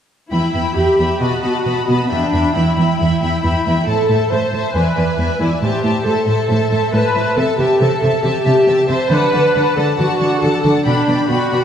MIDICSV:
0, 0, Header, 1, 5, 480
1, 0, Start_track
1, 0, Tempo, 446429
1, 342, Time_signature, 4, 2, 24, 8
1, 3701, Tempo, 436999
1, 12708, End_track
2, 0, Start_track
2, 0, Title_t, "Violin section"
2, 0, Program_c, 0, 48
2, 341, Note_on_c, 0, 83, 30
2, 570, Note_off_c, 0, 83, 0
2, 583, Note_on_c, 0, 83, 27
2, 807, Note_off_c, 0, 83, 0
2, 820, Note_on_c, 0, 83, 29
2, 1055, Note_off_c, 0, 83, 0
2, 1071, Note_on_c, 0, 83, 26
2, 1295, Note_off_c, 0, 83, 0
2, 1308, Note_on_c, 0, 83, 33
2, 1529, Note_off_c, 0, 83, 0
2, 1542, Note_on_c, 0, 83, 29
2, 1771, Note_off_c, 0, 83, 0
2, 1784, Note_on_c, 0, 83, 29
2, 2021, Note_off_c, 0, 83, 0
2, 2034, Note_on_c, 0, 83, 28
2, 2250, Note_off_c, 0, 83, 0
2, 2263, Note_on_c, 0, 83, 30
2, 2492, Note_off_c, 0, 83, 0
2, 2504, Note_on_c, 0, 83, 29
2, 2727, Note_off_c, 0, 83, 0
2, 2740, Note_on_c, 0, 83, 30
2, 2963, Note_off_c, 0, 83, 0
2, 2976, Note_on_c, 0, 83, 26
2, 3207, Note_off_c, 0, 83, 0
2, 3220, Note_on_c, 0, 83, 35
2, 3449, Note_off_c, 0, 83, 0
2, 3462, Note_on_c, 0, 83, 31
2, 3677, Note_off_c, 0, 83, 0
2, 3690, Note_on_c, 0, 83, 29
2, 3927, Note_off_c, 0, 83, 0
2, 3941, Note_on_c, 0, 83, 26
2, 4175, Note_off_c, 0, 83, 0
2, 4175, Note_on_c, 0, 81, 34
2, 4399, Note_off_c, 0, 81, 0
2, 4412, Note_on_c, 0, 81, 29
2, 4646, Note_off_c, 0, 81, 0
2, 4659, Note_on_c, 0, 81, 30
2, 4885, Note_off_c, 0, 81, 0
2, 4898, Note_on_c, 0, 81, 31
2, 5134, Note_on_c, 0, 80, 39
2, 5136, Note_off_c, 0, 81, 0
2, 5363, Note_off_c, 0, 80, 0
2, 5377, Note_on_c, 0, 80, 32
2, 5606, Note_off_c, 0, 80, 0
2, 5619, Note_on_c, 0, 80, 36
2, 5853, Note_off_c, 0, 80, 0
2, 5866, Note_on_c, 0, 80, 33
2, 6100, Note_off_c, 0, 80, 0
2, 6109, Note_on_c, 0, 81, 35
2, 6320, Note_off_c, 0, 81, 0
2, 6333, Note_on_c, 0, 81, 33
2, 6564, Note_off_c, 0, 81, 0
2, 6577, Note_on_c, 0, 81, 35
2, 6801, Note_off_c, 0, 81, 0
2, 6814, Note_on_c, 0, 81, 36
2, 7044, Note_off_c, 0, 81, 0
2, 7057, Note_on_c, 0, 81, 40
2, 7289, Note_off_c, 0, 81, 0
2, 7310, Note_on_c, 0, 81, 32
2, 7528, Note_off_c, 0, 81, 0
2, 7542, Note_on_c, 0, 81, 40
2, 7766, Note_off_c, 0, 81, 0
2, 7780, Note_on_c, 0, 81, 33
2, 8006, Note_off_c, 0, 81, 0
2, 8019, Note_on_c, 0, 81, 41
2, 8243, Note_off_c, 0, 81, 0
2, 8256, Note_on_c, 0, 81, 40
2, 8482, Note_off_c, 0, 81, 0
2, 8495, Note_on_c, 0, 81, 35
2, 8726, Note_off_c, 0, 81, 0
2, 8738, Note_on_c, 0, 81, 37
2, 8954, Note_off_c, 0, 81, 0
2, 8967, Note_on_c, 0, 81, 42
2, 9180, Note_off_c, 0, 81, 0
2, 9193, Note_on_c, 0, 81, 37
2, 9428, Note_off_c, 0, 81, 0
2, 9441, Note_on_c, 0, 81, 40
2, 9669, Note_off_c, 0, 81, 0
2, 9682, Note_on_c, 0, 81, 35
2, 9898, Note_off_c, 0, 81, 0
2, 9911, Note_on_c, 0, 81, 42
2, 10155, Note_off_c, 0, 81, 0
2, 10169, Note_on_c, 0, 81, 40
2, 10406, Note_off_c, 0, 81, 0
2, 10422, Note_on_c, 0, 81, 36
2, 10638, Note_off_c, 0, 81, 0
2, 10651, Note_on_c, 0, 81, 38
2, 10883, Note_off_c, 0, 81, 0
2, 10899, Note_on_c, 0, 81, 45
2, 11115, Note_off_c, 0, 81, 0
2, 11128, Note_on_c, 0, 81, 35
2, 11353, Note_off_c, 0, 81, 0
2, 11367, Note_on_c, 0, 81, 41
2, 11594, Note_off_c, 0, 81, 0
2, 11607, Note_on_c, 0, 81, 34
2, 11846, Note_off_c, 0, 81, 0
2, 11846, Note_on_c, 0, 83, 38
2, 12074, Note_off_c, 0, 83, 0
2, 12087, Note_on_c, 0, 83, 35
2, 12313, Note_off_c, 0, 83, 0
2, 12326, Note_on_c, 0, 83, 38
2, 12557, Note_off_c, 0, 83, 0
2, 12571, Note_on_c, 0, 83, 34
2, 12708, Note_off_c, 0, 83, 0
2, 12708, End_track
3, 0, Start_track
3, 0, Title_t, "Violin section"
3, 0, Program_c, 1, 48
3, 332, Note_on_c, 1, 79, 34
3, 336, Note_on_c, 1, 76, 31
3, 560, Note_off_c, 1, 76, 0
3, 562, Note_off_c, 1, 79, 0
3, 573, Note_on_c, 1, 76, 26
3, 574, Note_on_c, 1, 79, 29
3, 805, Note_off_c, 1, 79, 0
3, 808, Note_off_c, 1, 76, 0
3, 818, Note_on_c, 1, 79, 30
3, 821, Note_on_c, 1, 76, 28
3, 1038, Note_off_c, 1, 79, 0
3, 1039, Note_off_c, 1, 76, 0
3, 1051, Note_on_c, 1, 79, 23
3, 1052, Note_on_c, 1, 76, 27
3, 1290, Note_off_c, 1, 76, 0
3, 1290, Note_off_c, 1, 79, 0
3, 1294, Note_on_c, 1, 81, 31
3, 1296, Note_on_c, 1, 75, 29
3, 1511, Note_off_c, 1, 81, 0
3, 1515, Note_off_c, 1, 75, 0
3, 1524, Note_on_c, 1, 81, 27
3, 1528, Note_on_c, 1, 75, 31
3, 1752, Note_off_c, 1, 75, 0
3, 1753, Note_off_c, 1, 81, 0
3, 1765, Note_on_c, 1, 75, 30
3, 1766, Note_on_c, 1, 81, 27
3, 2001, Note_off_c, 1, 81, 0
3, 2003, Note_off_c, 1, 75, 0
3, 2014, Note_on_c, 1, 81, 27
3, 2016, Note_on_c, 1, 75, 27
3, 2247, Note_on_c, 1, 76, 33
3, 2247, Note_on_c, 1, 79, 37
3, 2257, Note_off_c, 1, 81, 0
3, 2258, Note_off_c, 1, 75, 0
3, 2483, Note_off_c, 1, 79, 0
3, 2484, Note_off_c, 1, 76, 0
3, 2496, Note_on_c, 1, 79, 29
3, 2497, Note_on_c, 1, 76, 28
3, 2724, Note_off_c, 1, 79, 0
3, 2728, Note_off_c, 1, 76, 0
3, 2736, Note_on_c, 1, 79, 29
3, 2741, Note_on_c, 1, 76, 29
3, 2956, Note_off_c, 1, 76, 0
3, 2962, Note_off_c, 1, 79, 0
3, 2969, Note_on_c, 1, 76, 27
3, 2975, Note_on_c, 1, 79, 27
3, 3209, Note_off_c, 1, 79, 0
3, 3211, Note_off_c, 1, 76, 0
3, 3222, Note_on_c, 1, 79, 32
3, 3223, Note_on_c, 1, 76, 31
3, 3443, Note_off_c, 1, 76, 0
3, 3445, Note_off_c, 1, 79, 0
3, 3456, Note_on_c, 1, 76, 32
3, 3458, Note_on_c, 1, 79, 33
3, 3674, Note_off_c, 1, 79, 0
3, 3675, Note_off_c, 1, 76, 0
3, 3687, Note_on_c, 1, 79, 31
3, 3688, Note_on_c, 1, 76, 32
3, 3922, Note_off_c, 1, 76, 0
3, 3923, Note_off_c, 1, 79, 0
3, 3935, Note_on_c, 1, 76, 32
3, 3937, Note_on_c, 1, 79, 29
3, 4166, Note_off_c, 1, 76, 0
3, 4173, Note_off_c, 1, 79, 0
3, 4179, Note_on_c, 1, 76, 36
3, 4180, Note_on_c, 1, 72, 34
3, 4395, Note_off_c, 1, 72, 0
3, 4402, Note_off_c, 1, 76, 0
3, 4408, Note_on_c, 1, 72, 29
3, 4415, Note_on_c, 1, 76, 30
3, 4639, Note_off_c, 1, 72, 0
3, 4639, Note_off_c, 1, 76, 0
3, 4652, Note_on_c, 1, 72, 29
3, 4652, Note_on_c, 1, 76, 32
3, 4881, Note_off_c, 1, 76, 0
3, 4883, Note_off_c, 1, 72, 0
3, 4895, Note_on_c, 1, 76, 30
3, 4896, Note_on_c, 1, 72, 31
3, 5132, Note_off_c, 1, 76, 0
3, 5135, Note_off_c, 1, 72, 0
3, 5145, Note_on_c, 1, 74, 33
3, 5145, Note_on_c, 1, 76, 36
3, 5359, Note_off_c, 1, 74, 0
3, 5362, Note_off_c, 1, 76, 0
3, 5372, Note_on_c, 1, 74, 31
3, 5375, Note_on_c, 1, 76, 31
3, 5606, Note_off_c, 1, 74, 0
3, 5611, Note_off_c, 1, 76, 0
3, 5619, Note_on_c, 1, 74, 34
3, 5624, Note_on_c, 1, 76, 35
3, 5852, Note_off_c, 1, 74, 0
3, 5858, Note_off_c, 1, 76, 0
3, 5865, Note_on_c, 1, 74, 34
3, 5871, Note_on_c, 1, 76, 34
3, 6096, Note_off_c, 1, 76, 0
3, 6100, Note_off_c, 1, 74, 0
3, 6106, Note_on_c, 1, 72, 39
3, 6109, Note_on_c, 1, 76, 41
3, 6323, Note_off_c, 1, 72, 0
3, 6329, Note_off_c, 1, 76, 0
3, 6336, Note_on_c, 1, 72, 34
3, 6342, Note_on_c, 1, 76, 35
3, 6543, Note_off_c, 1, 72, 0
3, 6543, Note_off_c, 1, 76, 0
3, 6556, Note_on_c, 1, 72, 35
3, 6556, Note_on_c, 1, 76, 34
3, 6797, Note_off_c, 1, 76, 0
3, 6799, Note_off_c, 1, 72, 0
3, 6810, Note_on_c, 1, 72, 32
3, 6810, Note_on_c, 1, 76, 33
3, 7020, Note_off_c, 1, 76, 0
3, 7023, Note_off_c, 1, 72, 0
3, 7033, Note_on_c, 1, 76, 37
3, 7036, Note_on_c, 1, 72, 37
3, 7276, Note_off_c, 1, 72, 0
3, 7277, Note_off_c, 1, 76, 0
3, 7289, Note_on_c, 1, 72, 35
3, 7289, Note_on_c, 1, 76, 37
3, 7513, Note_off_c, 1, 72, 0
3, 7515, Note_off_c, 1, 76, 0
3, 7526, Note_on_c, 1, 72, 36
3, 7528, Note_on_c, 1, 76, 36
3, 7759, Note_off_c, 1, 76, 0
3, 7765, Note_off_c, 1, 72, 0
3, 7772, Note_on_c, 1, 76, 35
3, 7777, Note_on_c, 1, 72, 37
3, 7998, Note_off_c, 1, 76, 0
3, 8009, Note_off_c, 1, 72, 0
3, 8011, Note_on_c, 1, 76, 41
3, 8012, Note_off_c, 1, 76, 0
3, 8012, Note_on_c, 1, 76, 42
3, 8241, Note_off_c, 1, 76, 0
3, 8254, Note_on_c, 1, 76, 33
3, 8256, Note_off_c, 1, 76, 0
3, 8256, Note_on_c, 1, 76, 37
3, 8469, Note_off_c, 1, 76, 0
3, 8482, Note_on_c, 1, 76, 37
3, 8486, Note_off_c, 1, 76, 0
3, 8486, Note_on_c, 1, 76, 40
3, 8710, Note_off_c, 1, 76, 0
3, 8723, Note_on_c, 1, 76, 34
3, 8724, Note_off_c, 1, 76, 0
3, 8724, Note_on_c, 1, 76, 34
3, 8951, Note_off_c, 1, 76, 0
3, 8964, Note_on_c, 1, 76, 43
3, 8971, Note_off_c, 1, 76, 0
3, 8971, Note_on_c, 1, 76, 40
3, 9190, Note_off_c, 1, 76, 0
3, 9204, Note_on_c, 1, 76, 38
3, 9206, Note_off_c, 1, 76, 0
3, 9206, Note_on_c, 1, 76, 39
3, 9429, Note_off_c, 1, 76, 0
3, 9442, Note_on_c, 1, 76, 40
3, 9447, Note_off_c, 1, 76, 0
3, 9447, Note_on_c, 1, 76, 38
3, 9660, Note_off_c, 1, 76, 0
3, 9673, Note_on_c, 1, 76, 37
3, 9674, Note_off_c, 1, 76, 0
3, 9674, Note_on_c, 1, 76, 38
3, 9913, Note_off_c, 1, 76, 0
3, 9926, Note_on_c, 1, 74, 44
3, 9929, Note_on_c, 1, 78, 44
3, 10145, Note_off_c, 1, 74, 0
3, 10147, Note_off_c, 1, 78, 0
3, 10158, Note_on_c, 1, 74, 36
3, 10161, Note_on_c, 1, 78, 34
3, 10386, Note_off_c, 1, 74, 0
3, 10389, Note_off_c, 1, 78, 0
3, 10399, Note_on_c, 1, 74, 39
3, 10403, Note_on_c, 1, 78, 36
3, 10632, Note_off_c, 1, 78, 0
3, 10634, Note_off_c, 1, 74, 0
3, 10645, Note_on_c, 1, 78, 35
3, 10647, Note_on_c, 1, 74, 32
3, 10849, Note_off_c, 1, 78, 0
3, 10853, Note_off_c, 1, 74, 0
3, 10862, Note_on_c, 1, 78, 41
3, 10866, Note_on_c, 1, 74, 39
3, 11102, Note_off_c, 1, 78, 0
3, 11105, Note_off_c, 1, 74, 0
3, 11115, Note_on_c, 1, 78, 40
3, 11118, Note_on_c, 1, 74, 39
3, 11348, Note_off_c, 1, 78, 0
3, 11352, Note_off_c, 1, 74, 0
3, 11361, Note_on_c, 1, 78, 37
3, 11365, Note_on_c, 1, 74, 41
3, 11582, Note_off_c, 1, 78, 0
3, 11584, Note_off_c, 1, 74, 0
3, 11595, Note_on_c, 1, 78, 40
3, 11597, Note_on_c, 1, 74, 37
3, 11824, Note_off_c, 1, 74, 0
3, 11836, Note_on_c, 1, 79, 40
3, 11837, Note_on_c, 1, 74, 41
3, 11840, Note_off_c, 1, 78, 0
3, 12067, Note_off_c, 1, 74, 0
3, 12067, Note_off_c, 1, 79, 0
3, 12080, Note_on_c, 1, 79, 37
3, 12081, Note_on_c, 1, 74, 35
3, 12314, Note_off_c, 1, 79, 0
3, 12317, Note_off_c, 1, 74, 0
3, 12328, Note_on_c, 1, 79, 35
3, 12331, Note_on_c, 1, 74, 36
3, 12556, Note_off_c, 1, 74, 0
3, 12557, Note_off_c, 1, 79, 0
3, 12569, Note_on_c, 1, 74, 31
3, 12570, Note_on_c, 1, 79, 29
3, 12708, Note_off_c, 1, 74, 0
3, 12708, Note_off_c, 1, 79, 0
3, 12708, End_track
4, 0, Start_track
4, 0, Title_t, "Viola section"
4, 0, Program_c, 2, 48
4, 340, Note_on_c, 2, 64, 45
4, 787, Note_off_c, 2, 64, 0
4, 816, Note_on_c, 2, 67, 39
4, 1297, Note_off_c, 2, 67, 0
4, 1300, Note_on_c, 2, 66, 42
4, 2009, Note_off_c, 2, 66, 0
4, 2029, Note_on_c, 2, 59, 37
4, 2265, Note_off_c, 2, 59, 0
4, 2273, Note_on_c, 2, 62, 53
4, 2737, Note_off_c, 2, 62, 0
4, 2750, Note_on_c, 2, 64, 41
4, 4172, Note_on_c, 2, 69, 51
4, 4183, Note_off_c, 2, 64, 0
4, 4647, Note_off_c, 2, 69, 0
4, 4652, Note_on_c, 2, 72, 44
4, 5139, Note_off_c, 2, 72, 0
4, 5143, Note_on_c, 2, 71, 49
4, 5865, Note_off_c, 2, 71, 0
4, 5867, Note_on_c, 2, 64, 50
4, 5955, Note_off_c, 2, 64, 0
4, 6101, Note_on_c, 2, 67, 61
4, 6565, Note_off_c, 2, 67, 0
4, 6571, Note_on_c, 2, 69, 50
4, 7526, Note_on_c, 2, 71, 64
4, 7530, Note_off_c, 2, 69, 0
4, 8008, Note_off_c, 2, 71, 0
4, 8009, Note_on_c, 2, 69, 56
4, 8247, Note_on_c, 2, 67, 52
4, 8249, Note_off_c, 2, 69, 0
4, 8482, Note_off_c, 2, 67, 0
4, 8486, Note_on_c, 2, 69, 54
4, 8965, Note_off_c, 2, 69, 0
4, 8968, Note_on_c, 2, 67, 57
4, 9680, Note_off_c, 2, 67, 0
4, 9681, Note_on_c, 2, 72, 62
4, 9917, Note_off_c, 2, 72, 0
4, 9927, Note_on_c, 2, 71, 72
4, 10645, Note_on_c, 2, 69, 60
4, 10651, Note_off_c, 2, 71, 0
4, 10733, Note_off_c, 2, 69, 0
4, 10877, Note_on_c, 2, 66, 52
4, 11351, Note_off_c, 2, 66, 0
4, 11363, Note_on_c, 2, 69, 58
4, 11607, Note_off_c, 2, 69, 0
4, 11844, Note_on_c, 2, 62, 56
4, 12296, Note_off_c, 2, 62, 0
4, 12325, Note_on_c, 2, 66, 58
4, 12708, Note_off_c, 2, 66, 0
4, 12708, End_track
5, 0, Start_track
5, 0, Title_t, "Cello section"
5, 0, Program_c, 3, 48
5, 343, Note_on_c, 3, 40, 33
5, 429, Note_off_c, 3, 40, 0
5, 585, Note_on_c, 3, 40, 31
5, 671, Note_off_c, 3, 40, 0
5, 827, Note_on_c, 3, 40, 29
5, 913, Note_off_c, 3, 40, 0
5, 1070, Note_on_c, 3, 40, 30
5, 1156, Note_off_c, 3, 40, 0
5, 1303, Note_on_c, 3, 47, 32
5, 1389, Note_off_c, 3, 47, 0
5, 1539, Note_on_c, 3, 47, 29
5, 1625, Note_off_c, 3, 47, 0
5, 1786, Note_on_c, 3, 47, 35
5, 1872, Note_off_c, 3, 47, 0
5, 2028, Note_on_c, 3, 47, 31
5, 2114, Note_off_c, 3, 47, 0
5, 2273, Note_on_c, 3, 40, 33
5, 2359, Note_off_c, 3, 40, 0
5, 2514, Note_on_c, 3, 40, 30
5, 2600, Note_off_c, 3, 40, 0
5, 2747, Note_on_c, 3, 40, 31
5, 2833, Note_off_c, 3, 40, 0
5, 2980, Note_on_c, 3, 40, 33
5, 3066, Note_off_c, 3, 40, 0
5, 3225, Note_on_c, 3, 40, 32
5, 3311, Note_off_c, 3, 40, 0
5, 3461, Note_on_c, 3, 40, 31
5, 3547, Note_off_c, 3, 40, 0
5, 3701, Note_on_c, 3, 40, 38
5, 3789, Note_off_c, 3, 40, 0
5, 3942, Note_on_c, 3, 40, 34
5, 4030, Note_off_c, 3, 40, 0
5, 4182, Note_on_c, 3, 45, 33
5, 4270, Note_off_c, 3, 45, 0
5, 4420, Note_on_c, 3, 45, 36
5, 4508, Note_off_c, 3, 45, 0
5, 4663, Note_on_c, 3, 45, 34
5, 4751, Note_off_c, 3, 45, 0
5, 4900, Note_on_c, 3, 45, 34
5, 4988, Note_off_c, 3, 45, 0
5, 5139, Note_on_c, 3, 40, 41
5, 5227, Note_off_c, 3, 40, 0
5, 5376, Note_on_c, 3, 40, 31
5, 5464, Note_off_c, 3, 40, 0
5, 5616, Note_on_c, 3, 40, 36
5, 5704, Note_off_c, 3, 40, 0
5, 5860, Note_on_c, 3, 40, 34
5, 5948, Note_off_c, 3, 40, 0
5, 6098, Note_on_c, 3, 45, 38
5, 6186, Note_off_c, 3, 45, 0
5, 6339, Note_on_c, 3, 45, 38
5, 6427, Note_off_c, 3, 45, 0
5, 6572, Note_on_c, 3, 45, 33
5, 6660, Note_off_c, 3, 45, 0
5, 6814, Note_on_c, 3, 45, 36
5, 6902, Note_off_c, 3, 45, 0
5, 7050, Note_on_c, 3, 45, 40
5, 7138, Note_off_c, 3, 45, 0
5, 7289, Note_on_c, 3, 45, 36
5, 7377, Note_off_c, 3, 45, 0
5, 7532, Note_on_c, 3, 45, 44
5, 7620, Note_off_c, 3, 45, 0
5, 7773, Note_on_c, 3, 45, 37
5, 7861, Note_off_c, 3, 45, 0
5, 8016, Note_on_c, 3, 48, 44
5, 8104, Note_off_c, 3, 48, 0
5, 8253, Note_on_c, 3, 48, 45
5, 8341, Note_off_c, 3, 48, 0
5, 8496, Note_on_c, 3, 48, 39
5, 8584, Note_off_c, 3, 48, 0
5, 8741, Note_on_c, 3, 48, 40
5, 8828, Note_off_c, 3, 48, 0
5, 8976, Note_on_c, 3, 48, 43
5, 9064, Note_off_c, 3, 48, 0
5, 9212, Note_on_c, 3, 48, 38
5, 9299, Note_off_c, 3, 48, 0
5, 9449, Note_on_c, 3, 48, 42
5, 9537, Note_off_c, 3, 48, 0
5, 9688, Note_on_c, 3, 48, 39
5, 9776, Note_off_c, 3, 48, 0
5, 9925, Note_on_c, 3, 50, 43
5, 10013, Note_off_c, 3, 50, 0
5, 10173, Note_on_c, 3, 50, 40
5, 10261, Note_off_c, 3, 50, 0
5, 10419, Note_on_c, 3, 50, 41
5, 10507, Note_off_c, 3, 50, 0
5, 10660, Note_on_c, 3, 50, 38
5, 10748, Note_off_c, 3, 50, 0
5, 10896, Note_on_c, 3, 50, 42
5, 10984, Note_off_c, 3, 50, 0
5, 11135, Note_on_c, 3, 50, 39
5, 11223, Note_off_c, 3, 50, 0
5, 11372, Note_on_c, 3, 50, 43
5, 11460, Note_off_c, 3, 50, 0
5, 11612, Note_on_c, 3, 50, 37
5, 11700, Note_off_c, 3, 50, 0
5, 11853, Note_on_c, 3, 47, 45
5, 11941, Note_off_c, 3, 47, 0
5, 12092, Note_on_c, 3, 47, 35
5, 12180, Note_off_c, 3, 47, 0
5, 12333, Note_on_c, 3, 47, 36
5, 12420, Note_off_c, 3, 47, 0
5, 12579, Note_on_c, 3, 47, 38
5, 12667, Note_off_c, 3, 47, 0
5, 12708, End_track
0, 0, End_of_file